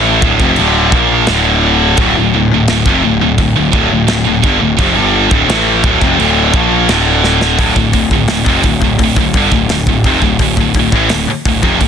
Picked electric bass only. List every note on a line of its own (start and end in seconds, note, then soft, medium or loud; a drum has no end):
0.00 0.20 A1 loud
0.22 0.39 D1 medium
0.40 0.56 F1 loud
0.59 0.91 D1 loud
0.93 1.25 A#1 medium
1.28 1.94 D1 loud
1.98 2.14 D1 loud
2.17 2.33 D1 medium
2.34 2.50 D1 medium
2.53 2.68 D1 medium
2.70 2.86 D1 medium
2.86 3.02 F1 medium
3.05 3.21 D1 medium
3.22 3.37 D1 medium
3.38 3.54 D1 medium
3.57 3.73 D1 medium
3.74 3.90 D1 medium
3.92 4.08 D1 medium
4.10 4.25 D1 medium
4.26 4.43 D1 medium
4.44 4.60 G1 loud
4.61 4.77 D1 medium
4.79 4.95 F1 medium
4.96 5.29 G1 loud
5.31 5.48 D1 loud
5.48 5.81 A1 loud
5.84 6.00 D1 medium
6.01 6.18 F1 loud
6.19 6.51 D1 loud
6.54 6.87 A#1 medium
6.90 7.55 D1 medium
7.59 7.75 D1 medium
7.76 7.93 D1 medium
7.94 8.10 D1 medium
8.11 8.28 D1 medium
8.29 8.46 D1 medium
8.46 8.63 F1 medium
8.64 8.81 D1 medium
8.82 8.99 D1 medium
8.99 9.16 D1 medium
9.17 9.33 D1 medium
9.34 9.51 G1 medium
9.52 9.68 D1 medium
9.69 9.86 D1 medium
9.87 10.03 D1 medium
10.04 10.21 F1 loud
10.22 10.39 D1 medium
10.39 10.56 D1 medium
10.57 10.74 D1 medium
10.74 10.91 D1 medium
10.92 11.09 A1 loud
11.10 11.27 D1 medium
11.28 muted picked electric bass stroke soft
11.46 11.62 D1 medium
11.63 11.80 F1 medium
11.81 11.88 D1 medium